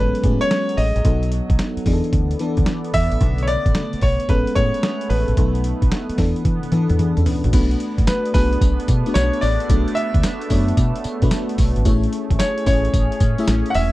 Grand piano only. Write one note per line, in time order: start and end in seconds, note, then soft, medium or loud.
0.00 0.43 B4 medium
0.41 0.78 C#5 loud
0.77 1.28 D#5 loud
2.94 3.45 E5 loud
3.43 3.48 C#5 medium
3.48 4.03 D5 loud
4.03 4.30 C#5 medium
4.29 4.57 B4 medium
4.55 5.06 C#5 loud
5.10 6.14 B4 medium
8.07 8.32 B4 medium
8.34 9.18 B4 medium
9.14 9.43 C#5 loud
9.41 9.98 D5 loud
9.95 11.54 E5 loud
12.39 12.65 C#5 medium
12.67 13.73 C#5 medium
13.70 13.75 F#5 medium
13.75 13.92 E5 loud